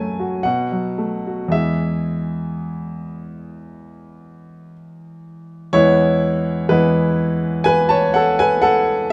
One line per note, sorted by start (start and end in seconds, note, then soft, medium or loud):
0.00 0.40 F#2 medium
0.00 0.46 C#3 soft
0.00 0.34 A3 soft
0.00 0.43 G#5 loud
0.20 0.44 F#4 soft
0.43 1.48 B2 medium
0.43 1.51 F#5 medium
0.72 1.14 F#3 soft
0.98 1.41 A3 soft
1.27 1.52 F#4 soft
1.48 5.70 E2 medium
1.48 5.71 G#3 soft
1.48 5.71 E4 soft
1.48 5.71 G#4 soft
1.48 4.73 E5 medium
5.73 6.68 E2 medium
5.73 6.68 G#3 medium
5.73 6.69 B3 medium
5.73 6.68 E4 medium
5.73 6.72 C#5 loud
6.69 9.12 E2 medium
6.69 9.12 G#3 medium
6.69 9.12 B3 medium
6.69 7.63 E4 medium
6.69 7.64 B4 medium
7.64 7.89 B4 medium
7.64 7.90 G#5 loud
7.89 8.13 C#5 medium
7.89 8.15 A5 medium
8.14 8.38 A4 medium
8.14 8.39 F#5 loud
8.39 8.62 B4 medium
8.39 8.63 G#5 loud
8.62 9.07 A4 medium
8.62 9.10 F#5 loud